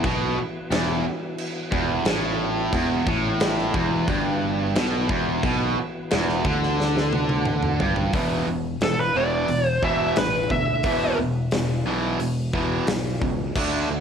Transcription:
0.00 0.35 B1 medium
0.00 8.10 E3 medium
0.00 8.11 B3 medium
0.00 8.11 F#4 medium
0.00 kick loud
0.00 crash medium
0.05 0.37 B2 loud
0.37 muted fretless electric bass stroke soft
0.37 muted distorted electric guitar stroke medium
0.37 muted overdriven electric guitar stroke medium
0.70 1.02 E1 loud
0.70 1.05 E2 medium
0.70 snare loud
0.70 crash medium
1.38 crash medium
1.72 2.04 E1 loud
1.72 2.05 E2 loud
1.72 kick loud
2.04 2.69 A1 medium
2.04 2.73 A2 loud
2.04 snare loud
2.04 crash medium
2.73 3.05 E1 loud
2.73 3.07 E2 loud
2.73 kick loud
2.73 crash medium
3.07 3.71 A1 medium
3.07 3.74 A2 loud
3.07 kick loud
3.40 snare loud
3.40 crash medium
3.58 snare soft
3.74 4.06 E1 loud
3.74 4.08 E2 loud
3.74 kick loud
4.08 4.72 G1 loud
4.08 4.75 G2 loud
4.08 kick loud
4.08 crash medium
4.75 5.07 B1 medium
4.75 5.09 B2 loud
4.75 snare loud
4.75 crash medium
5.09 5.41 E1 medium
5.09 5.43 E2 loud
5.09 kick loud
5.43 5.75 B1 loud
5.43 5.76 B2 loud
5.43 kick loud
5.43 crash medium
5.78 muted overdriven electric guitar stroke medium
5.78 muted fretless electric bass stroke soft
5.78 muted distorted electric guitar stroke medium
6.10 6.43 E1 medium
6.10 6.45 E2 medium
6.10 snare loud
6.10 crash medium
6.29 snare soft
6.44 7.76 D2 loud
6.44 7.79 D3 loud
6.44 kick loud
6.63 snare soft
6.80 snare medium
6.97 snare medium
7.13 high tom medium
7.29 high tom medium
7.46 mid tom medium
7.63 mid tom medium
7.79 8.12 G1 medium
7.79 8.13 G2 loud
7.79 floor tom loud
7.96 floor tom medium
8.13 8.43 E1 loud
8.13 8.46 E2 medium
8.13 8.46 B2 loud
8.13 8.46 E3 loud
8.13 kick loud
8.13 open hi-hat medium
8.47 8.77 E1 medium
8.47 8.78 E2 medium
8.47 8.79 B2 medium
8.81 9.11 E1 medium
8.81 9.12 E2 medium
8.81 9.13 B2 medium
8.81 8.99 A4 loud
8.81 snare loud
8.81 open hi-hat medium
9.00 9.16 B4 medium
9.15 9.45 E1 medium
9.15 9.48 E2 medium
9.15 9.48 B2 medium
9.15 9.48 E3 medium
9.15 9.67 D5 medium
9.48 9.79 E1 medium
9.48 9.80 E2 medium
9.48 9.80 B2 medium
9.48 open hi-hat medium
9.67 9.82 C5 medium
9.82 10.12 E1 medium
9.82 10.15 E2 medium
9.82 10.15 B2 loud
9.82 10.15 E3 medium
9.82 10.17 E5 loud
9.82 kick medium
10.16 10.47 A1 medium
10.16 10.48 E2 medium
10.16 10.48 B2 medium
10.16 10.50 B4 medium
10.16 snare loud
10.16 open hi-hat medium
10.50 10.80 D2 medium
10.50 10.81 E2 medium
10.50 10.82 B2 medium
10.50 11.17 E5 medium
10.50 kick medium
10.83 11.14 E1 medium
10.83 11.17 E2 loud
10.83 11.17 B2 medium
10.83 11.17 E3 loud
10.83 kick loud
10.83 open hi-hat medium
11.18 11.48 E1 medium
11.18 11.49 E2 medium
11.18 11.49 B2 medium
11.51 11.82 E1 medium
11.51 11.83 E2 medium
11.51 11.83 B2 medium
11.51 snare loud
11.51 open hi-hat medium
11.85 12.15 B1 medium
11.85 12.18 E2 medium
11.85 12.18 B2 medium
11.85 12.18 E3 loud
12.19 12.79 E1 medium
12.19 12.50 E2 medium
12.19 12.51 B2 medium
12.19 open hi-hat medium
12.53 12.85 E2 loud
12.53 12.86 B2 medium
12.53 12.86 E3 loud
12.53 kick medium
12.87 13.17 B1 medium
12.87 13.18 E2 medium
12.87 13.18 B2 medium
12.87 snare loud
12.87 open hi-hat medium
13.21 13.51 C#2 medium
13.21 13.52 E2 medium
13.21 13.52 B2 medium
13.21 kick medium
13.55 13.85 D2 loud
13.55 13.87 D3 medium
13.55 13.87 A3 loud
13.55 13.88 D4 loud
13.55 kick loud
13.55 crash loud
13.89 14.00 D2 medium
13.89 14.00 D3 medium
13.89 14.00 A3 medium

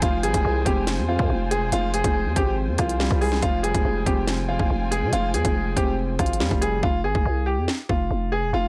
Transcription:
0.00 0.25 F1 loud
0.00 1.07 F3 medium
0.00 3.39 F4 medium
0.00 0.19 F4 loud
0.00 6.79 C5 medium
0.00 3.39 G5 medium
0.00 3.39 G#5 medium
0.00 kick loud
0.00 closed hi-hat medium
0.23 0.34 G#1 loud
0.23 1.30 G3 medium
0.23 0.63 G#4 medium
0.23 closed hi-hat medium
0.34 0.44 F1 loud
0.34 kick loud
0.34 closed hi-hat medium
0.45 0.65 C2 loud
0.45 1.49 G#3 medium
0.65 1.00 F1 loud
0.65 1.72 C4 loud
0.65 0.82 G4 medium
0.65 kick loud
0.65 closed hi-hat medium
0.87 snare loud
0.87 closed hi-hat medium
0.98 1.18 F2 loud
1.08 1.71 F3 medium
1.08 1.48 F4 medium
1.19 1.29 F2 loud
1.19 kick medium
1.30 1.63 F1 loud
1.51 2.13 G#3 medium
1.51 1.68 G#4 medium
1.51 closed hi-hat medium
1.62 1.72 E1 loud
1.72 2.03 F1 loud
1.72 2.78 F3 medium
1.72 1.89 F4 loud
1.72 closed hi-hat medium
1.94 2.34 G#4 medium
1.94 closed hi-hat medium
2.04 2.27 F1 loud
2.04 kick loud
2.04 closed hi-hat medium
2.15 3.19 G#3 medium
2.25 2.36 F2 loud
2.36 2.69 G#1 loud
2.36 3.43 C4 medium
2.36 2.53 G4 medium
2.36 kick loud
2.36 closed hi-hat medium
2.68 2.78 F2 loud
2.78 3.09 C2 loud
2.78 3.41 F3 medium
2.78 3.19 F4 medium
2.78 kick loud
2.78 cross-stick medium
2.78 closed hi-hat medium
2.89 closed hi-hat medium
3.00 3.42 G3 loud
3.00 snare loud
3.11 3.41 C2 loud
3.11 kick loud
3.21 3.42 G#3 medium
3.21 3.38 G#4 medium
3.21 open hi-hat medium
3.32 snare medium
3.42 3.73 F1 loud
3.42 4.47 F3 loud
3.42 6.79 F4 medium
3.42 3.59 F4 loud
3.42 6.80 G5 medium
3.42 6.80 G#5 medium
3.42 kick loud
3.42 closed hi-hat medium
3.63 4.70 G3 medium
3.63 4.03 G#4 medium
3.63 closed hi-hat medium
3.75 3.84 F1 loud
3.75 kick loud
3.75 closed hi-hat medium
3.85 4.05 F1 loud
3.85 4.90 G#3 medium
4.06 4.57 F1 loud
4.06 5.13 C4 loud
4.06 4.23 G4 medium
4.06 kick loud
4.06 closed hi-hat medium
4.27 snare loud
4.27 closed hi-hat medium
4.49 5.11 F3 medium
4.49 4.89 F4 medium
4.59 4.70 F1 loud
4.59 kick medium
4.70 5.04 F1 loud
4.91 5.54 G#3 medium
4.91 5.08 G#4 medium
4.91 closed hi-hat medium
5.02 5.12 C3 loud
5.13 5.35 F1 loud
5.13 6.18 F3 medium
5.13 5.29 F4 loud
5.13 closed hi-hat medium
5.34 5.44 F2 loud
5.34 5.74 G#4 medium
5.34 closed hi-hat medium
5.45 5.75 F1 loud
5.45 kick loud
5.45 closed hi-hat medium
5.55 6.60 G#3 medium
5.76 6.17 F1 loud
5.76 6.83 C4 loud
5.76 5.93 G4 medium
5.76 kick loud
5.76 closed hi-hat medium
6.19 6.42 G#1 loud
6.19 6.83 F3 medium
6.19 6.59 F4 medium
6.19 kick medium
6.19 cross-stick medium
6.19 closed hi-hat medium
6.26 closed hi-hat medium
6.33 closed hi-hat medium
6.40 6.50 F2 loud
6.40 6.83 G3 loud
6.40 snare loud
6.51 6.82 F1 loud
6.51 kick loud
6.62 6.83 G#3 medium
6.62 6.78 G#4 medium
6.62 closed hi-hat medium
6.83 7.06 F1 loud
6.83 7.00 F4 loud
6.83 kick loud
7.04 7.14 G#1 loud
7.04 7.44 G#4 medium
7.15 7.25 F1 loud
7.15 kick loud
7.26 7.59 C2 loud
7.46 7.63 G4 medium
7.58 7.68 F2 loud
7.68 snare loud
7.89 8.10 F1 loud
7.89 8.29 F4 medium
7.89 kick medium
8.11 8.44 F1 loud
8.32 8.49 G#4 medium
8.43 8.53 E1 loud
8.53 8.68 F1 loud
8.53 8.68 F4 loud

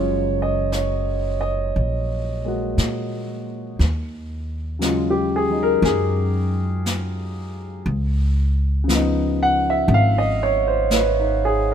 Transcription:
0.00 1.71 F#1 medium
0.00 3.77 C#3 soft
0.00 3.79 F#3 soft
0.00 2.43 G#3 soft
0.00 3.82 F4 soft
0.00 3.81 A#4 medium
0.00 0.42 C#5 medium
0.42 0.75 D#5 medium
0.72 1.43 C#5 medium
0.72 brush sweep soft
0.72 snare soft
0.72 hi-hat pedal soft
1.41 2.73 D#5 medium
1.75 2.74 A#1 medium
1.75 brush sweep soft
2.45 3.80 G#3 soft
2.45 3.80 A#3 soft
2.45 3.81 F#4 soft
2.78 3.76 A#2 medium
2.78 brush sweep soft
2.78 snare soft
2.78 hi-hat pedal soft
3.79 5.79 D#2 medium
3.79 brush sweep soft
3.79 snare soft
4.79 7.85 C#3 soft
4.79 5.48 F#3 soft
4.79 7.87 G#3 soft
4.79 brush sweep soft
4.79 snare soft
4.79 hi-hat pedal soft
4.84 7.88 F4 soft
5.10 5.46 G4 medium
5.36 5.59 G#4 medium
5.49 7.86 F#3 soft
5.49 7.87 D#4 soft
5.63 5.81 A#4 medium
5.82 7.82 F#2 medium
5.82 6.82 G#4 medium
5.82 brush sweep soft
5.82 snare soft
6.86 brush sweep soft
6.86 snare soft
6.86 hi-hat pedal medium
7.86 9.84 C#2 medium
7.86 brush sweep soft
8.84 11.74 C#3 soft
8.84 11.74 F3 soft
8.89 11.74 B3 soft
8.89 brush sweep soft
8.89 snare soft
8.89 hi-hat pedal medium
8.95 11.18 D#4 medium
9.43 9.65 F#5 medium
9.70 9.87 E5 medium
9.88 11.74 G#1 medium
9.88 brush sweep soft
9.94 10.24 F5 medium
10.18 10.53 D#5 medium
10.43 10.66 C#5 medium
10.67 10.86 C5 medium
10.91 11.25 B4 medium
10.91 brush sweep soft
10.91 snare soft
10.91 hi-hat pedal medium
11.19 11.54 D#4 soft
11.45 11.67 G#4 medium

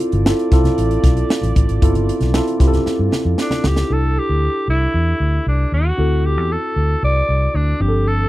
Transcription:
0.00 3.60 A3 medium
0.00 0.22 C4 medium
0.00 0.22 E4 medium
0.00 0.22 F4 medium
0.00 3.60 F4 medium
0.00 0.23 A4 medium
0.00 3.60 D5 medium
0.00 closed hi-hat medium
0.12 0.31 G1 medium
0.12 closed hi-hat soft
0.12 high conga medium
0.26 0.50 C4 medium
0.26 0.50 E4 medium
0.26 0.50 F4 medium
0.26 0.51 A4 medium
0.26 snare loud
0.39 closed hi-hat soft
0.52 0.70 C2 medium
0.52 1.49 C4 medium
0.52 1.49 E4 medium
0.52 1.50 F4 medium
0.52 1.50 A4 medium
0.52 kick loud
0.52 snare soft
0.52 closed hi-hat medium
0.64 snare soft
0.64 closed hi-hat medium
0.64 high conga medium
0.64 low conga medium
0.78 0.96 A1 medium
0.78 closed hi-hat medium
0.78 muted conga soft
0.91 closed hi-hat soft
1.03 1.21 B1 medium
1.03 kick medium
1.03 snare soft
1.03 closed hi-hat medium
1.03 muted conga soft
1.03 high conga medium
1.17 closed hi-hat soft
1.29 snare loud
1.29 muted conga soft
1.41 1.52 A1 medium
1.41 closed hi-hat medium
1.41 high conga medium
1.56 1.65 A1 medium
1.56 kick medium
1.56 closed hi-hat medium
1.56 muted conga soft
1.56 low conga medium
1.69 1.78 G#1 medium
1.69 closed hi-hat soft
1.82 2.09 G1 medium
1.82 1.88 B3 medium
1.82 2.31 E4 medium
1.82 2.31 F4 medium
1.82 2.31 A4 medium
1.82 kick medium
1.82 closed hi-hat medium
1.82 muted conga soft
1.82 low conga medium
1.88 2.33 C4 medium
1.94 closed hi-hat soft
1.94 high conga medium
2.09 closed hi-hat medium
2.20 2.39 B1 medium
2.20 snare soft
2.20 closed hi-hat soft
2.20 high conga medium
2.34 2.58 C4 medium
2.34 2.58 E4 medium
2.34 2.59 F4 medium
2.34 2.59 A4 medium
2.34 snare loud
2.48 closed hi-hat soft
2.60 2.78 C2 medium
2.60 3.57 C4 medium
2.60 3.58 E4 medium
2.60 3.58 F4 medium
2.60 2.67 G4 medium
2.60 kick medium
2.60 snare soft
2.60 closed hi-hat medium
2.60 muted conga soft
2.68 3.61 A4 loud
2.73 snare soft
2.73 closed hi-hat soft
2.73 high conga medium
2.73 low conga medium
2.86 muted fingered electric bass stroke soft
2.86 snare medium
2.86 muted conga soft
2.99 3.08 G2 medium
3.11 snare medium
3.11 muted conga soft
3.11 high conga soft
3.25 3.34 F2 medium
3.38 3.69 D4 medium
3.38 snare medium
3.38 muted conga soft
3.50 snare medium
3.50 high conga medium
3.64 3.82 C#2 medium
3.64 3.94 G4 medium
3.64 snare medium
3.64 muted conga soft
3.64 low conga medium
3.76 snare medium
3.89 4.17 C2 medium
3.89 5.94 D4 soft
3.89 5.94 E4 soft
3.89 5.95 G4 soft
3.89 5.95 A4 medium
3.89 4.20 A4 medium
4.18 4.69 G4 medium
4.29 4.47 D2 medium
4.68 4.86 C2 medium
4.68 5.43 E4 medium
4.94 5.12 E2 medium
5.20 5.38 D2 medium
5.47 5.64 C2 medium
5.47 5.71 D4 medium
5.72 5.90 D#2 medium
5.72 6.27 F#4 medium
5.97 6.37 D2 medium
5.97 7.77 C4 soft
5.97 7.77 E4 soft
5.97 7.77 F#4 soft
5.97 7.78 A4 medium
6.26 6.53 G4 medium
6.37 6.55 E2 medium
6.52 7.03 A4 medium
6.76 6.94 D2 medium
7.03 7.21 C2 medium
7.03 7.57 D5 loud
7.29 7.47 C2 medium
7.54 7.72 D2 medium
7.54 7.83 D4 medium
7.80 8.25 G1 medium
7.80 8.29 F3 soft
7.80 8.29 C4 medium
7.80 8.29 D4 medium
7.80 8.09 G4 medium
7.80 7.88 G4 soft
7.88 8.29 A4 medium
8.08 8.29 A4 medium

